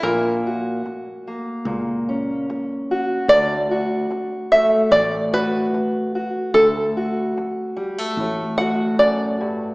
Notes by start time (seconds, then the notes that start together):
0.03 A#1 A#2 A#4
0.47 F#4
0.86 muted steel-string acoustic guitar stroke
1.27 A#3
1.65 C#2 A#2
2.09 C#4
2.50 muted steel-string acoustic guitar stroke
2.91 F#4
3.28 D2 D5
3.71 F#4
4.10 muted steel-string acoustic guitar stroke
4.52 A3 E5
4.91 A1 A2 D5
5.33 F#4 B4
5.74 muted steel-string acoustic guitar stroke
6.15 F#4
6.54 D2 A4
6.97 F#4
7.37 muted steel-string acoustic guitar stroke
7.77 G3
7.98 A3
8.17 A1 A2
8.58 F#4 F#5
8.99 F#2 D5
9.41 G2